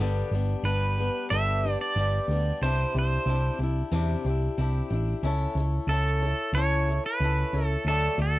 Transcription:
0.00 0.22 G1 medium
0.00 0.32 G2 medium
0.00 0.32 D3 medium
0.00 0.33 G3 medium
0.00 0.33 B3 medium
0.00 0.33 D4 medium
0.00 0.31 G4 loud
0.31 0.54 G1 medium
0.31 0.63 G3 soft
0.31 0.65 B3 medium
0.31 0.66 D4 medium
0.31 0.65 G4 medium
0.63 1.08 G1 medium
0.63 0.97 G3 medium
0.63 0.98 B3 medium
0.63 0.98 D4 medium
0.63 1.33 B4 medium
0.68 0.97 G4 medium
0.98 1.31 G3 soft
0.98 1.31 B3 soft
0.98 1.31 D4 soft
0.98 1.31 G4 soft
1.30 1.75 G1 medium
1.30 1.64 G2 medium
1.30 1.64 D3 medium
1.30 1.64 G3 medium
1.30 1.64 B3 medium
1.30 1.64 D4 medium
1.30 1.62 G4 medium
1.30 1.81 E5 loud
1.64 1.96 G3 soft
1.64 1.97 B3 soft
1.64 1.97 D4 soft
1.64 1.96 G4 medium
1.81 2.65 D5 medium
1.96 2.18 G1 medium
1.96 2.29 G3 medium
1.96 2.30 B3 medium
1.96 2.29 D4 medium
2.00 2.27 G4 medium
2.28 2.50 D2 medium
2.28 2.63 B3 soft
2.28 2.62 D4 soft
2.28 2.62 G4 soft
2.32 2.62 G3 soft
2.62 2.84 C2 medium
2.62 2.95 C3 medium
2.62 2.95 C4 medium
2.62 2.95 D4 medium
2.62 2.95 E4 medium
2.62 2.93 G4 medium
2.62 2.96 C5 medium
2.94 3.17 C2 medium
2.94 3.28 D4 soft
2.94 3.27 E4 soft
2.94 3.27 G4 medium
2.99 3.58 C5 medium
3.26 3.49 C2 medium
3.26 3.60 C4 medium
3.26 3.60 D4 medium
3.26 3.60 E4 medium
3.30 3.58 G4 medium
3.59 3.82 C2 medium
3.59 3.92 D4 soft
3.59 3.92 G4 medium
3.63 3.91 E4 soft
3.92 4.14 E2 medium
3.92 4.25 C3 medium
3.92 4.25 C4 medium
3.92 4.26 D4 medium
3.92 4.26 E4 medium
3.92 4.25 G4 medium
4.25 4.47 C2 medium
4.25 4.59 D4 medium
4.25 4.59 G4 medium
4.29 4.58 E4 soft
4.58 4.80 C2 medium
4.58 4.91 C4 medium
4.58 4.91 D4 medium
4.58 4.91 E4 medium
4.58 4.89 G4 medium
4.90 5.13 A1 medium
4.90 5.24 D4 medium
4.90 5.23 E4 soft
4.90 5.24 G4 medium
5.23 5.45 C#2 medium
5.23 5.56 C#4 medium
5.23 5.57 E4 medium
5.23 5.57 A4 medium
5.23 5.56 C#5 medium
5.55 5.78 C#2 medium
5.55 5.90 C#5 medium
5.59 5.88 E4 soft
5.59 5.89 A4 medium
5.87 6.32 C#2 medium
5.87 6.22 C#4 medium
5.87 6.22 E4 medium
5.87 6.57 A4 medium
5.87 6.23 A4 medium
5.92 6.21 C#5 medium
6.22 6.55 E4 soft
6.22 6.55 A4 soft
6.22 6.55 C#5 medium
6.53 6.98 C#2 medium
6.53 6.88 C#4 medium
6.53 6.88 E4 medium
6.53 6.89 A4 medium
6.53 7.06 C#5 loud
6.57 6.87 C#5 medium
6.88 7.22 E4 soft
6.88 7.22 A4 soft
6.88 7.21 C#5 soft
7.06 7.67 B4 medium
7.20 7.43 C#2 medium
7.20 7.54 C#4 medium
7.20 7.55 E4 medium
7.20 7.55 A4 medium
7.25 7.53 C#5 medium
7.53 7.75 C#2 medium
7.53 7.87 A4 soft
7.53 7.86 C#5 soft
7.58 7.88 E4 soft
7.67 7.88 A4 medium
7.85 8.07 D2 medium
7.85 8.20 D3 medium
7.85 8.20 F#3 medium
7.85 8.20 A3 medium
7.85 8.20 D4 medium
7.85 8.21 A4 medium
7.89 8.20 F#4 medium
7.89 8.18 D5 medium
8.18 8.39 D2 medium
8.18 8.39 D4 soft
8.18 8.39 F#4 soft
8.18 8.39 A4 medium
8.18 8.39 D5 medium
8.22 8.39 A3 soft

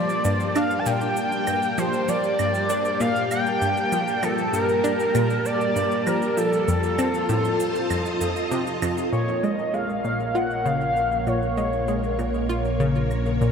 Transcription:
0.00 0.23 F3 medium
0.00 6.68 G3 medium
0.00 6.68 A#3 medium
0.00 6.68 G4 medium
0.00 0.58 D5 loud
0.00 9.14 A5 medium
0.09 cabasa soft
0.25 0.54 G2 medium
0.25 cabasa medium
0.40 cabasa soft
0.56 0.68 D4 loud
0.56 0.81 F5 loud
0.56 cabasa medium
0.56 claves medium
0.71 cabasa soft
0.79 0.88 A5 medium
0.86 1.07 A#2 loud
0.86 1.80 G5 loud
0.86 cabasa medium
1.01 cabasa soft
1.17 cabasa medium
1.32 cabasa soft
1.47 1.60 G2 medium
1.47 cabasa medium
1.47 claves medium
1.63 cabasa soft
1.78 1.91 F3 medium
1.78 2.10 C5 loud
1.78 cabasa medium
1.93 cabasa soft
2.08 2.38 F3 medium
2.08 3.02 D5 loud
2.08 cabasa medium
2.24 cabasa soft
2.39 2.68 G2 medium
2.39 cabasa medium
2.39 claves medium
2.54 cabasa soft
2.70 2.82 D4 loud
2.70 cabasa medium
2.85 cabasa soft
3.00 3.21 A#2 loud
3.00 3.31 F5 loud
3.00 cabasa medium
3.16 cabasa soft
3.31 4.25 G5 loud
3.31 cabasa medium
3.31 claves medium
3.46 cabasa soft
3.62 3.74 G2 medium
3.62 cabasa medium
3.77 cabasa soft
3.92 4.05 F3 medium
3.92 cabasa medium
4.08 cabasa soft
4.23 4.52 F3 medium
4.23 4.53 A4 medium
4.23 cabasa medium
4.23 claves medium
4.38 cabasa soft
4.53 4.83 G2 medium
4.53 5.47 A#4 loud
4.53 cabasa medium
4.69 cabasa soft
4.84 4.97 D4 loud
4.84 cabasa medium
5.00 cabasa soft
5.15 5.36 A#2 loud
5.15 cabasa medium
5.15 claves medium
5.30 cabasa soft
5.46 6.08 D5 loud
5.46 cabasa medium
5.61 cabasa soft
5.76 5.89 G2 medium
5.76 cabasa medium
5.92 cabasa soft
6.07 6.19 F3 medium
6.07 6.39 A#4 medium
6.07 cabasa medium
6.07 claves medium
6.22 cabasa soft
6.37 6.66 F3 medium
6.37 8.52 A4 medium
6.37 cabasa medium
6.53 cabasa soft
6.68 6.97 F2 medium
6.68 11.01 F4 medium
6.68 cabasa medium
6.83 cabasa soft
6.99 7.11 C4 loud
6.99 9.13 C5 medium
6.99 cabasa medium
6.99 claves medium
7.14 cabasa soft
7.29 7.50 A2 loud
7.29 9.13 A5 medium
7.29 cabasa medium
7.45 cabasa soft
7.60 cabasa medium
7.75 10.02 D#5 loud
7.75 cabasa soft
7.90 8.03 F2 medium
7.90 cabasa medium
7.90 claves medium
8.06 cabasa soft
8.21 8.34 F2 medium
8.21 cabasa medium
8.36 cabasa soft
8.51 8.72 C3 loud
8.51 cabasa medium
8.67 cabasa soft
8.82 9.03 F2 loud
8.82 cabasa medium
8.82 claves medium
8.98 cabasa soft
9.12 13.52 A#1 medium
9.12 9.25 A#2 medium
9.12 13.52 A#3 medium
9.12 9.45 C#5 medium
9.12 13.52 C6 medium
9.12 cabasa medium
9.28 cabasa soft
9.37 13.52 C#5 medium
9.42 9.56 G#3 medium
9.42 13.52 A#4 medium
9.42 9.75 D#5 medium
9.42 cabasa medium
9.42 claves medium
9.59 cabasa soft
9.74 10.03 G#3 medium
9.74 10.37 F5 loud
9.74 cabasa medium
9.89 cabasa soft
10.04 10.34 A#2 medium
10.04 cabasa medium
10.20 cabasa soft
10.35 10.48 F4 loud
10.35 10.68 F#5 loud
10.35 cabasa medium
10.35 claves medium
10.50 cabasa soft
10.66 10.87 C#3 loud
10.66 11.29 F5 loud
10.66 cabasa medium
10.81 cabasa soft
10.96 cabasa medium
11.12 cabasa soft
11.27 11.39 A#2 medium
11.27 12.19 C#5 medium
11.27 cabasa medium
11.27 claves medium
11.43 cabasa soft
11.57 11.70 G#3 medium
11.57 cabasa medium
11.73 cabasa soft
11.88 12.17 G#3 medium
11.88 cabasa medium
12.04 cabasa soft
12.19 12.48 A#2 medium
12.19 cabasa medium
12.19 claves medium
12.34 cabasa soft
12.49 12.62 F4 loud
12.49 cabasa medium
12.65 cabasa soft
12.80 13.01 C#3 loud
12.80 cabasa medium
12.96 cabasa soft
13.11 cabasa medium
13.11 claves medium
13.26 cabasa soft
13.41 13.52 A#2 medium
13.41 cabasa medium

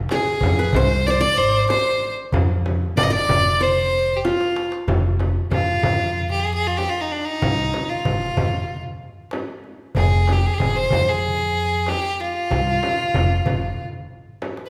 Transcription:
0.09 0.77 G#4 medium
0.09 1.33 G#4 medium
0.09 darbuka tek medium
0.09 frame drum medium
0.41 0.67 F2 medium
0.41 darbuka dum medium
0.41 frame drum medium
0.59 0.82 B4 medium
0.73 1.23 C2 medium
0.73 1.08 C5 loud
0.73 1.70 C5 medium
0.73 darbuka dum medium
0.73 frame drum medium
1.05 1.12 D5 loud
1.05 1.20 D5 medium
1.05 darbuka ka soft
1.10 1.22 C5 medium
1.21 2.19 D5 medium
1.21 1.39 D5 loud
1.21 darbuka ka soft
1.37 1.62 G#1 medium
1.37 1.69 C5 loud
1.69 2.14 C5 medium
1.69 2.76 C5 medium
1.69 darbuka tek medium
1.69 frame drum medium
2.01 darbuka ka soft
2.17 darbuka ka soft
2.32 2.83 F2 medium
2.32 darbuka dum medium
2.32 frame drum medium
2.50 darbuka ka soft
2.66 darbuka tek medium
2.66 frame drum medium
2.96 3.21 F1 medium
2.96 3.05 D5 medium
2.96 3.10 D5 medium
2.96 darbuka dum medium
2.96 frame drum loud
3.03 3.14 D#5 medium
3.10 4.09 D5 medium
3.10 3.64 D5 loud
3.29 4.28 F1 medium
3.29 frame drum medium
3.29 darbuka dum medium
3.46 darbuka ka soft
3.60 4.66 C5 medium
3.60 4.18 C5 medium
3.60 darbuka ka soft
3.77 darbuka ka soft
4.17 4.27 G4 soft
4.25 5.59 F4 medium
4.25 4.73 F4 medium
4.25 darbuka tek medium
4.25 frame drum medium
4.41 darbuka ka medium
4.56 darbuka tek medium
4.72 darbuka ka medium
4.88 5.37 F1 medium
4.88 darbuka dum medium
4.88 frame drum medium
5.20 darbuka tek medium
5.20 frame drum medium
5.51 5.76 F1 medium
5.51 6.27 F4 medium
5.51 darbuka dum medium
5.51 frame drum medium
5.83 6.83 F2 medium
5.83 frame drum medium
5.83 darbuka dum medium
6.16 darbuka ka soft
6.31 6.41 G4 medium
6.40 6.54 G#4 medium
6.54 6.68 G#4 medium
6.67 6.79 F4 medium
6.78 6.91 G4 medium
6.78 darbuka tek medium
6.78 frame drum medium
6.89 7.02 F4 medium
7.00 7.13 D#4 medium
7.11 7.26 D4 medium
7.11 darbuka ka soft
7.25 7.90 D#4 medium
7.42 7.67 C2 medium
7.42 darbuka dum medium
7.42 frame drum medium
7.74 darbuka tek medium
7.74 frame drum medium
7.89 8.81 F4 medium
8.05 8.31 F1 medium
8.05 frame drum medium
8.05 darbuka dum medium
8.37 8.63 F1 medium
8.37 darbuka dum medium
8.37 frame drum medium
8.69 darbuka ka soft
9.31 darbuka tek medium
9.31 frame drum medium
9.64 darbuka ka soft
9.95 10.46 F1 medium
9.95 10.34 G#4 medium
9.95 darbuka dum medium
9.95 frame drum medium
10.28 darbuka tek medium
10.28 frame drum medium
10.32 10.48 G4 medium
10.46 10.55 G#4 medium
10.54 10.60 G4 medium
10.58 10.85 F1 medium
10.58 10.77 G#4 medium
10.58 darbuka dum medium
10.58 frame drum medium
10.76 11.10 C5 medium
10.90 11.92 F2 medium
10.90 darbuka dum medium
10.90 frame drum medium
11.09 11.90 G#4 medium
11.23 darbuka ka soft
11.86 12.22 G4 medium
11.86 darbuka tek medium
11.86 frame drum medium
12.19 13.86 F4 medium
12.19 darbuka ka soft
12.51 12.76 C2 medium
12.51 darbuka dum medium
12.51 frame drum medium
12.67 darbuka ka soft
12.83 darbuka tek medium
12.83 frame drum medium
13.14 13.39 F1 medium
13.14 darbuka dum medium
13.14 frame drum medium
13.46 13.72 F1 medium
13.46 darbuka dum medium
13.46 frame drum medium
13.62 darbuka ka soft
13.78 darbuka ka soft
13.93 darbuka ka soft
14.42 darbuka tek medium
14.42 frame drum medium
14.57 darbuka ka medium
14.66 14.69 B4 medium

